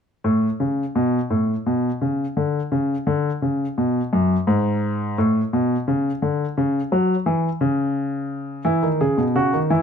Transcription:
0, 0, Header, 1, 2, 480
1, 0, Start_track
1, 0, Tempo, 705053
1, 171, Time_signature, 12, 3, 24, 8
1, 3528, Tempo, 694444
1, 6736, End_track
2, 0, Start_track
2, 0, Title_t, "Grand piano"
2, 0, Program_c, 0, 0
2, 165, Note_on_c, 0, 45, 65
2, 317, Note_off_c, 0, 45, 0
2, 408, Note_on_c, 0, 49, 53
2, 560, Note_off_c, 0, 49, 0
2, 650, Note_on_c, 0, 47, 60
2, 801, Note_off_c, 0, 47, 0
2, 888, Note_on_c, 0, 45, 59
2, 1040, Note_off_c, 0, 45, 0
2, 1133, Note_on_c, 0, 47, 56
2, 1284, Note_off_c, 0, 47, 0
2, 1372, Note_on_c, 0, 49, 54
2, 1523, Note_off_c, 0, 49, 0
2, 1612, Note_on_c, 0, 50, 56
2, 1762, Note_off_c, 0, 50, 0
2, 1850, Note_on_c, 0, 49, 62
2, 2000, Note_off_c, 0, 49, 0
2, 2088, Note_on_c, 0, 50, 64
2, 2239, Note_off_c, 0, 50, 0
2, 2330, Note_on_c, 0, 49, 54
2, 2479, Note_off_c, 0, 49, 0
2, 2571, Note_on_c, 0, 47, 55
2, 2720, Note_off_c, 0, 47, 0
2, 2810, Note_on_c, 0, 42, 66
2, 2959, Note_off_c, 0, 42, 0
2, 3045, Note_on_c, 0, 44, 65
2, 3511, Note_off_c, 0, 44, 0
2, 3527, Note_on_c, 0, 45, 64
2, 3677, Note_off_c, 0, 45, 0
2, 3769, Note_on_c, 0, 47, 58
2, 3918, Note_off_c, 0, 47, 0
2, 4008, Note_on_c, 0, 49, 63
2, 4157, Note_off_c, 0, 49, 0
2, 4247, Note_on_c, 0, 50, 57
2, 4395, Note_off_c, 0, 50, 0
2, 4491, Note_on_c, 0, 49, 66
2, 4638, Note_off_c, 0, 49, 0
2, 4729, Note_on_c, 0, 54, 60
2, 4877, Note_off_c, 0, 54, 0
2, 4965, Note_on_c, 0, 52, 64
2, 5114, Note_off_c, 0, 52, 0
2, 5205, Note_on_c, 0, 49, 68
2, 5902, Note_off_c, 0, 49, 0
2, 5922, Note_on_c, 0, 64, 62
2, 5924, Note_on_c, 0, 52, 55
2, 6041, Note_off_c, 0, 52, 0
2, 6047, Note_on_c, 0, 51, 51
2, 6073, Note_off_c, 0, 64, 0
2, 6163, Note_off_c, 0, 51, 0
2, 6172, Note_on_c, 0, 68, 59
2, 6173, Note_on_c, 0, 49, 47
2, 6287, Note_off_c, 0, 49, 0
2, 6287, Note_on_c, 0, 47, 52
2, 6320, Note_off_c, 0, 68, 0
2, 6404, Note_off_c, 0, 47, 0
2, 6412, Note_on_c, 0, 49, 55
2, 6413, Note_on_c, 0, 66, 67
2, 6527, Note_off_c, 0, 49, 0
2, 6536, Note_on_c, 0, 51, 49
2, 6561, Note_off_c, 0, 66, 0
2, 6649, Note_off_c, 0, 51, 0
2, 6653, Note_on_c, 0, 52, 59
2, 6653, Note_on_c, 0, 64, 64
2, 6736, Note_off_c, 0, 52, 0
2, 6736, Note_off_c, 0, 64, 0
2, 6736, End_track
0, 0, End_of_file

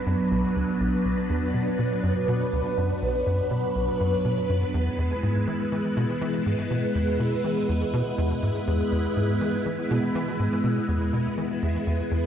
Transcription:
0, 0, Header, 1, 3, 480
1, 0, Start_track
1, 0, Tempo, 491803
1, 784, Time_signature, 4, 2, 24, 8
1, 11969, End_track
2, 0, Start_track
2, 0, Title_t, "String machine"
2, 0, Program_c, 0, 50
2, 0, Note_on_c, 0, 54, 78
2, 0, Note_on_c, 0, 59, 70
2, 0, Note_on_c, 0, 62, 71
2, 0, Note_on_c, 0, 71, 85
2, 4584, Note_off_c, 0, 54, 0
2, 4584, Note_off_c, 0, 59, 0
2, 4585, Note_off_c, 0, 62, 0
2, 4622, Note_on_c, 0, 64, 70
2, 4623, Note_on_c, 0, 56, 77
2, 4623, Note_on_c, 0, 59, 70
2, 11969, Note_off_c, 0, 56, 0
2, 11969, Note_off_c, 0, 59, 0
2, 11969, Note_off_c, 0, 64, 0
2, 11969, Note_off_c, 0, 71, 0
2, 11969, End_track
3, 0, Start_track
3, 0, Title_t, "Analog synth bass"
3, 0, Program_c, 1, 38
3, 62, Note_on_c, 1, 42, 103
3, 152, Note_off_c, 1, 42, 0
3, 303, Note_on_c, 1, 35, 104
3, 452, Note_off_c, 1, 35, 0
3, 544, Note_on_c, 1, 38, 75
3, 633, Note_off_c, 1, 38, 0
3, 781, Note_on_c, 1, 35, 100
3, 931, Note_off_c, 1, 35, 0
3, 1021, Note_on_c, 1, 35, 77
3, 1171, Note_off_c, 1, 35, 0
3, 1262, Note_on_c, 1, 40, 78
3, 1486, Note_off_c, 1, 40, 0
3, 1502, Note_on_c, 1, 47, 74
3, 1651, Note_off_c, 1, 47, 0
3, 1744, Note_on_c, 1, 47, 81
3, 1892, Note_off_c, 1, 47, 0
3, 1983, Note_on_c, 1, 42, 99
3, 2072, Note_off_c, 1, 42, 0
3, 2222, Note_on_c, 1, 47, 103
3, 2446, Note_off_c, 1, 47, 0
3, 2464, Note_on_c, 1, 38, 76
3, 2553, Note_off_c, 1, 38, 0
3, 2704, Note_on_c, 1, 42, 80
3, 2852, Note_off_c, 1, 42, 0
3, 2942, Note_on_c, 1, 35, 73
3, 3166, Note_off_c, 1, 35, 0
3, 3182, Note_on_c, 1, 42, 76
3, 3331, Note_off_c, 1, 42, 0
3, 3423, Note_on_c, 1, 47, 74
3, 3572, Note_off_c, 1, 47, 0
3, 3664, Note_on_c, 1, 35, 82
3, 3812, Note_off_c, 1, 35, 0
3, 3904, Note_on_c, 1, 42, 76
3, 4053, Note_off_c, 1, 42, 0
3, 4143, Note_on_c, 1, 47, 78
3, 4292, Note_off_c, 1, 47, 0
3, 4383, Note_on_c, 1, 42, 77
3, 4532, Note_off_c, 1, 42, 0
3, 4623, Note_on_c, 1, 40, 98
3, 4772, Note_off_c, 1, 40, 0
3, 4863, Note_on_c, 1, 40, 77
3, 5012, Note_off_c, 1, 40, 0
3, 5104, Note_on_c, 1, 44, 78
3, 5327, Note_off_c, 1, 44, 0
3, 5343, Note_on_c, 1, 52, 73
3, 5492, Note_off_c, 1, 52, 0
3, 5584, Note_on_c, 1, 52, 81
3, 5732, Note_off_c, 1, 52, 0
3, 5823, Note_on_c, 1, 47, 99
3, 5913, Note_off_c, 1, 47, 0
3, 6063, Note_on_c, 1, 52, 103
3, 6286, Note_off_c, 1, 52, 0
3, 6305, Note_on_c, 1, 44, 76
3, 6393, Note_off_c, 1, 44, 0
3, 6544, Note_on_c, 1, 47, 81
3, 6693, Note_off_c, 1, 47, 0
3, 6783, Note_on_c, 1, 40, 75
3, 7006, Note_off_c, 1, 40, 0
3, 7024, Note_on_c, 1, 47, 76
3, 7173, Note_off_c, 1, 47, 0
3, 7265, Note_on_c, 1, 52, 74
3, 7413, Note_off_c, 1, 52, 0
3, 7504, Note_on_c, 1, 40, 83
3, 7652, Note_off_c, 1, 40, 0
3, 7744, Note_on_c, 1, 47, 103
3, 7833, Note_off_c, 1, 47, 0
3, 7983, Note_on_c, 1, 40, 101
3, 8132, Note_off_c, 1, 40, 0
3, 8225, Note_on_c, 1, 44, 76
3, 8314, Note_off_c, 1, 44, 0
3, 8464, Note_on_c, 1, 40, 98
3, 8613, Note_off_c, 1, 40, 0
3, 8704, Note_on_c, 1, 40, 76
3, 8853, Note_off_c, 1, 40, 0
3, 8944, Note_on_c, 1, 44, 78
3, 9167, Note_off_c, 1, 44, 0
3, 9184, Note_on_c, 1, 52, 76
3, 9332, Note_off_c, 1, 52, 0
3, 9424, Note_on_c, 1, 52, 82
3, 9572, Note_off_c, 1, 52, 0
3, 9666, Note_on_c, 1, 47, 103
3, 9754, Note_off_c, 1, 47, 0
3, 9905, Note_on_c, 1, 52, 107
3, 10127, Note_off_c, 1, 52, 0
3, 10145, Note_on_c, 1, 44, 75
3, 10233, Note_off_c, 1, 44, 0
3, 10383, Note_on_c, 1, 47, 81
3, 10532, Note_off_c, 1, 47, 0
3, 10623, Note_on_c, 1, 40, 78
3, 10846, Note_off_c, 1, 40, 0
3, 10864, Note_on_c, 1, 47, 77
3, 11012, Note_off_c, 1, 47, 0
3, 11104, Note_on_c, 1, 52, 76
3, 11252, Note_off_c, 1, 52, 0
3, 11344, Note_on_c, 1, 40, 81
3, 11492, Note_off_c, 1, 40, 0
3, 11583, Note_on_c, 1, 40, 77
3, 11732, Note_off_c, 1, 40, 0
3, 11823, Note_on_c, 1, 40, 81
3, 11969, Note_off_c, 1, 40, 0
3, 11969, End_track
0, 0, End_of_file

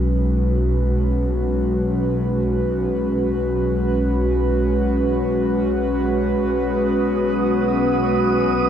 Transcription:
0, 0, Header, 1, 5, 480
1, 0, Start_track
1, 0, Key_signature, 5, "major"
1, 0, Tempo, 500000
1, 8346, End_track
2, 0, Start_track
2, 0, Title_t, "Synth texture"
2, 0, Program_c, 0, 99
2, 6201, Note_on_c, 0, 87, 82
2, 8346, Note_off_c, 0, 87, 0
2, 8346, End_track
3, 0, Start_track
3, 0, Title_t, "Analog synth pad"
3, 0, Program_c, 1, 89
3, 0, Note_on_c, 1, 56, 71
3, 0, Note_on_c, 1, 61, 60
3, 0, Note_on_c, 1, 66, 71
3, 0, Note_on_c, 1, 71, 74
3, 8346, Note_off_c, 1, 56, 0
3, 8346, Note_off_c, 1, 61, 0
3, 8346, Note_off_c, 1, 66, 0
3, 8346, Note_off_c, 1, 71, 0
3, 8346, End_track
4, 0, Start_track
4, 0, Title_t, "Synth drone"
4, 0, Program_c, 2, 95
4, 6198, Note_on_c, 2, 66, 71
4, 6203, Note_on_c, 2, 59, 68
4, 8346, Note_off_c, 2, 59, 0
4, 8346, Note_off_c, 2, 66, 0
4, 8346, End_track
5, 0, Start_track
5, 0, Title_t, "Double bass section"
5, 0, Program_c, 3, 48
5, 0, Note_on_c, 3, 35, 67
5, 6156, Note_off_c, 3, 35, 0
5, 6192, Note_on_c, 3, 35, 64
5, 8346, Note_off_c, 3, 35, 0
5, 8346, End_track
0, 0, End_of_file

